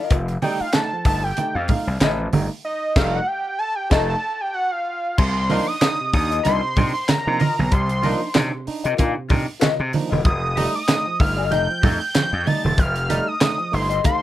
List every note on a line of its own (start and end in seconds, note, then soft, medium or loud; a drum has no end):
0.00 0.16 F4 medium
0.00 0.15 A#4 medium
0.00 0.15 D#5 medium
0.00 0.22 F5 loud
0.10 0.37 F1 loud
0.10 0.27 F3 medium
0.10 kick loud
0.10 closed hi-hat medium
0.28 closed hi-hat soft
0.42 0.58 G3 loud
0.42 0.59 A3 medium
0.42 0.59 D#4 loud
0.42 0.64 G4 medium
0.42 0.64 A4 medium
0.42 0.64 D#5 medium
0.42 0.62 G5 medium
0.42 open hi-hat medium
0.42 muted conga medium
0.60 0.66 A3 soft
0.60 0.66 D#4 soft
0.60 0.74 F5 medium
0.60 muted slap bass stroke soft
0.72 0.90 A3 medium
0.72 0.90 D#4 medium
0.72 1.05 A5 medium
0.72 snare loud
0.72 clap medium
0.72 closed hi-hat medium
0.72 high conga medium
0.92 1.05 F3 medium
0.92 muted hollow-body jazz guitar stroke soft
1.05 1.31 G1 medium
1.05 1.22 A3 medium
1.05 1.22 D#4 medium
1.05 1.23 G4 medium
1.05 1.24 A4 medium
1.05 1.22 D#5 medium
1.05 1.25 A5 medium
1.05 kick loud
1.05 open hi-hat medium
1.23 1.56 G5 loud
1.23 muted hollow-body jazz guitar stroke medium
1.37 1.54 A3 medium
1.37 1.54 D#4 medium
1.37 muted slap bass stroke soft
1.37 muted hollow-body jazz guitar stroke soft
1.37 closed hi-hat medium
1.37 muted conga medium
1.55 1.67 F2 medium
1.55 1.68 F3 medium
1.55 1.68 G4 medium
1.55 1.69 A4 medium
1.55 1.69 D#5 medium
1.55 1.87 F5 medium
1.68 1.85 A3 medium
1.68 1.86 D#4 medium
1.68 muted hollow-body jazz guitar stroke soft
1.68 kick medium
1.68 open hi-hat medium
1.68 muted conga soft
1.68 low conga medium
1.87 1.99 C2 medium
1.87 muted hollow-body jazz guitar stroke soft
2.00 2.27 A1 loud
2.00 2.09 A3 soft
2.00 2.09 D#4 soft
2.00 2.31 G4 medium
2.00 2.31 A4 medium
2.00 2.32 D#5 medium
2.00 snare loud
2.00 clap loud
2.00 closed hi-hat medium
2.00 high conga medium
2.19 2.31 F3 medium
2.33 2.47 G1 medium
2.33 2.49 G3 medium
2.33 2.49 A3 medium
2.33 2.49 D#4 medium
2.33 muted hollow-body jazz guitar stroke soft
2.33 open hi-hat medium
2.33 high conga medium
2.51 muted hollow-body jazz guitar stroke soft
2.65 2.98 D#5 loud
2.96 3.19 F1 loud
2.96 3.19 G3 loud
2.96 3.19 A3 loud
2.96 3.19 D#4 loud
2.96 3.19 G4 loud
2.96 3.19 A4 loud
2.96 3.20 D#5 medium
2.96 3.16 F5 medium
2.96 kick loud
2.96 snare loud
2.96 crash medium
3.14 3.28 F#5 loud
3.27 3.60 G5 loud
3.59 3.77 A5 loud
3.75 3.91 G5 loud
3.90 4.14 F1 loud
3.90 4.14 A3 loud
3.90 4.15 D#4 loud
3.90 4.13 G4 loud
3.90 4.13 A4 loud
3.90 4.14 D#5 loud
3.90 4.09 A5 loud
3.90 kick loud
3.90 snare loud
3.90 crash medium
4.09 4.42 A5 loud
4.41 4.55 G5 medium
4.54 4.73 F#5 loud
4.71 5.17 F5 medium
5.18 5.59 C2 medium
5.18 5.35 C3 medium
5.18 5.68 C6 loud
5.18 kick loud
5.18 crash loud
5.50 5.66 F3 medium
5.50 5.66 A#3 medium
5.50 5.66 D4 medium
5.50 5.66 D#4 loud
5.50 5.68 F4 medium
5.50 5.68 A#4 loud
5.50 5.68 D#5 medium
5.50 open hi-hat medium
5.50 muted conga medium
5.67 5.74 D4 soft
5.67 5.74 D#4 medium
5.67 6.13 D#6 loud
5.81 5.98 D4 medium
5.81 5.98 D#4 medium
5.81 muted hollow-body jazz guitar stroke medium
5.81 snare loud
5.81 clap loud
5.81 closed hi-hat medium
5.81 high conga medium
6.00 6.13 C3 medium
6.00 muted hollow-body jazz guitar stroke medium
6.13 6.39 D#2 medium
6.13 6.29 D4 medium
6.13 6.30 D#4 medium
6.13 6.43 D#6 loud
6.13 kick loud
6.13 open hi-hat medium
6.31 6.43 F4 medium
6.31 6.45 A#4 medium
6.31 6.45 D#5 medium
6.31 closed hi-hat medium
6.44 6.60 C2 loud
6.44 6.61 D4 medium
6.44 6.61 D#4 medium
6.44 6.63 F4 loud
6.44 6.63 A#4 loud
6.44 6.62 D#5 loud
6.44 6.90 C6 loud
6.44 closed hi-hat loud
6.44 muted conga medium
6.63 6.76 C3 medium
6.63 muted hollow-body jazz guitar stroke soft
6.76 6.92 C3 medium
6.76 6.93 D4 medium
6.76 6.93 D#4 medium
6.76 6.91 F4 medium
6.76 6.91 A#4 medium
6.76 6.92 D#5 medium
6.76 kick medium
6.76 open hi-hat medium
6.76 muted conga soft
6.76 low conga loud
6.94 7.09 C6 medium
6.94 muted hollow-body jazz guitar stroke soft
7.08 7.74 A#5 loud
7.08 snare loud
7.08 clap loud
7.08 closed hi-hat medium
7.08 high conga medium
7.26 7.38 C3 loud
7.26 7.39 F3 medium
7.26 7.39 A#3 medium
7.26 7.39 D4 medium
7.26 7.39 D#4 medium
7.26 muted hollow-body jazz guitar stroke soft
7.39 7.57 F4 medium
7.39 7.57 A#4 medium
7.39 7.56 D#5 loud
7.39 open hi-hat medium
7.39 high conga medium
7.57 7.70 B1 loud
7.57 7.71 C3 medium
7.57 muted hollow-body jazz guitar stroke soft
7.57 high conga medium
7.72 8.13 C2 loud
7.72 7.88 C3 medium
7.72 8.36 C6 loud
7.72 kick loud
7.72 closed hi-hat loud
7.89 closed hi-hat soft
8.02 8.20 F3 loud
8.02 8.20 A#3 loud
8.02 8.20 D4 medium
8.02 8.20 D#4 loud
8.02 8.21 F4 medium
8.02 8.21 A#4 loud
8.02 8.22 D#5 loud
8.02 open hi-hat medium
8.02 muted conga medium
8.22 8.28 D4 soft
8.22 8.28 D#4 soft
8.35 8.50 C3 loud
8.35 8.52 D4 medium
8.35 8.52 D#4 medium
8.35 muted hollow-body jazz guitar stroke soft
8.35 snare loud
8.35 clap loud
8.35 closed hi-hat medium
8.35 high conga medium
8.52 8.66 C3 medium
8.52 muted hollow-body jazz guitar stroke soft
8.67 8.83 D4 medium
8.67 8.83 D#4 medium
8.67 muted slap bass stroke soft
8.67 open hi-hat medium
8.84 8.97 C3 loud
8.84 8.96 F4 medium
8.84 8.97 A#4 medium
8.84 8.98 D#5 medium
8.84 closed hi-hat medium
8.97 9.14 A#2 loud
8.97 9.15 D4 medium
8.97 9.15 D#4 medium
8.97 9.16 F4 loud
8.97 9.15 A#4 medium
8.97 9.15 F5 medium
8.97 kick medium
8.97 closed hi-hat medium
8.97 muted conga medium
9.15 9.29 C3 medium
9.15 muted hollow-body jazz guitar stroke soft
9.29 9.45 C3 medium
9.29 9.46 D4 medium
9.29 9.46 D#4 medium
9.29 9.43 F4 medium
9.29 9.44 A#4 medium
9.29 9.44 D#5 medium
9.29 kick loud
9.29 open hi-hat medium
9.29 muted conga soft
9.29 low conga medium
9.46 muted hollow-body jazz guitar stroke medium
9.60 9.78 C3 medium
9.60 9.79 F4 medium
9.60 9.79 A#4 medium
9.60 9.80 D#5 loud
9.60 snare loud
9.60 clap loud
9.60 closed hi-hat loud
9.60 high conga medium
9.80 9.91 C3 loud
9.92 10.10 F3 medium
9.92 10.10 A#3 medium
9.92 10.10 D4 medium
9.92 10.10 D#4 medium
9.92 muted hollow-body jazz guitar stroke soft
9.92 open hi-hat medium
9.92 high conga medium
10.10 10.23 E1 loud
10.10 10.18 D4 soft
10.10 10.18 D#4 soft
10.10 10.22 F4 medium
10.10 10.22 A#4 medium
10.10 10.22 D#5 medium
10.10 high conga medium
10.25 10.66 F1 loud
10.25 10.41 F3 medium
10.25 10.71 D#6 loud
10.25 kick loud
10.25 closed hi-hat medium
10.56 10.73 G3 medium
10.56 10.73 A3 medium
10.56 10.73 D#4 loud
10.56 10.74 G4 medium
10.56 10.75 A4 medium
10.56 10.75 D#5 medium
10.56 open hi-hat loud
10.56 muted conga medium
10.75 10.81 A3 soft
10.75 10.81 D#4 soft
10.75 11.21 D#6 loud
10.88 11.05 A3 medium
10.88 11.05 D#4 medium
10.88 muted hollow-body jazz guitar stroke soft
10.88 snare loud
10.88 clap loud
10.88 closed hi-hat loud
10.88 high conga medium
11.06 11.19 F3 medium
11.06 muted hollow-body jazz guitar stroke medium
11.19 11.52 G1 medium
11.19 11.36 A3 medium
11.19 11.36 D#4 medium
11.19 11.51 F6 loud
11.19 kick loud
11.19 open hi-hat medium
11.37 11.50 G4 medium
11.37 11.50 A4 medium
11.37 11.51 D#5 medium
11.51 11.67 F1 medium
11.51 11.68 A3 medium
11.51 11.68 D#4 medium
11.51 11.69 G4 loud
11.51 11.68 A4 medium
11.51 11.68 D#5 loud
11.51 11.98 G6 loud
11.51 closed hi-hat medium
11.51 muted conga medium
11.70 11.82 F3 medium
11.82 11.98 F2 loud
11.82 11.99 A3 medium
11.82 12.00 D#4 medium
11.82 11.96 G4 medium
11.82 11.97 A4 medium
11.82 11.97 D#5 medium
11.82 kick loud
11.82 open hi-hat medium
11.82 muted conga soft
11.82 low conga medium
12.00 12.48 G6 loud
12.00 muted hollow-body jazz guitar stroke medium
12.15 12.31 F3 medium
12.15 snare loud
12.15 clap loud
12.15 closed hi-hat loud
12.15 high conga medium
12.31 12.44 F2 loud
12.31 muted hollow-body jazz guitar stroke medium
12.45 12.62 G3 medium
12.45 12.62 A3 medium
12.45 12.63 D#4 medium
12.45 12.64 G4 medium
12.45 12.64 A4 loud
12.45 12.63 D#5 medium
12.45 12.80 A6 loud
12.45 open hi-hat medium
12.45 high conga medium
12.64 12.76 E1 medium
12.64 12.71 A3 soft
12.64 12.71 D#4 soft
12.64 muted hollow-body jazz guitar stroke medium
12.64 high conga medium
12.78 13.18 F1 medium
12.78 12.94 F3 medium
12.78 13.29 F6 loud
12.78 kick loud
12.78 closed hi-hat medium
12.96 closed hi-hat medium
13.09 13.26 G3 medium
13.09 13.26 A3 medium
13.09 13.26 D#4 loud
13.09 13.27 G4 medium
13.09 13.28 A4 medium
13.09 13.28 D#5 medium
13.09 closed hi-hat loud
13.09 muted conga medium
13.28 13.34 A3 soft
13.28 13.34 D#4 soft
13.28 13.75 D#6 loud
13.41 13.57 A3 medium
13.41 13.57 D#4 medium
13.41 muted hollow-body jazz guitar stroke soft
13.41 snare loud
13.41 clap loud
13.41 closed hi-hat loud
13.41 high conga medium
13.58 13.71 F3 medium
13.58 muted hollow-body jazz guitar stroke medium
13.72 13.99 G1 medium
13.72 13.88 A3 medium
13.72 13.89 D#4 medium
13.72 14.04 C6 loud
13.72 open hi-hat medium
13.89 14.03 G4 medium
13.89 14.04 A4 medium
13.89 14.04 D#5 loud
13.89 closed hi-hat medium
14.04 14.20 A3 medium
14.04 14.20 D#4 medium
14.04 14.22 G4 medium
14.04 14.22 A4 medium
14.04 14.22 F5 loud
14.04 14.22 C6 medium
14.04 kick loud
14.04 closed hi-hat medium
14.04 muted conga medium